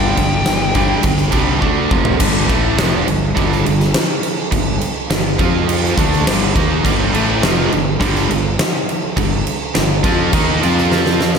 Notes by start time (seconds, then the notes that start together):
Already playing: G1 G2 D3 G3 G5
0.17 G1 G2 D3, kick, crash
0.46 G1 G2 D3, snare, crash
0.74 G2 D3 G3, kick, crash
1.03 G1 G2 D3, kick, crash
1.18 snare
1.32 C2 G2 D3 G3, kick, crash
1.62 D2 D3 A3 D4, kick
1.91 F1 F2 C3 F3, kick
2.05 floor tom
2.20 G1 G2 D3 G3, kick, crash
2.49 A1 A2 E3 A3, kick, crash
2.78 F1 F2 C3 F3, snare, crash
3.07 G1 G2 D3, crash
3.35 G1 G2 D3 G3, kick, crash
3.52 snare
3.65 G1 G2 D3, crash
3.80 snare
3.94 snare, crash
4.23 crash
4.52 G1 G2 D3, kick, crash
4.81 crash
5.10 G1 G2 D3, snare, crash
5.39 F2 F3 C4 F4, kick, crash
5.69 crash
5.84 snare
5.98 D2 D3 A3 D4, kick, crash
6.13 snare
6.27 G1 G2 D3 G3, snare, crash
6.56 D#2 D#3 A#3 D#4, kick, crash
6.85 G1 G2 D3 G3, kick, crash
7.14 A1 A2 E3 A3, crash
7.43 F1 F2 C3 F3, snare, crash
7.72 G1 G2 D3, crash
7.99 G1 G2 D3 G3, kick, crash
8.16 snare
8.30 G1 G2 D3, crash
8.59 snare, crash
8.89 crash
9.17 G1 G2 D3, kick, crash
9.47 crash
9.75 G1 G2 D3, snare, crash
10.04 F2 F3 C4 F4, kick, crash
10.33 D#2 D#3 A#3 D#4, kick, crash
10.62 F2 F3 C4 F4, crash
10.78 snare
10.92 snare
11.06 snare
11.21 snare
11.35 snare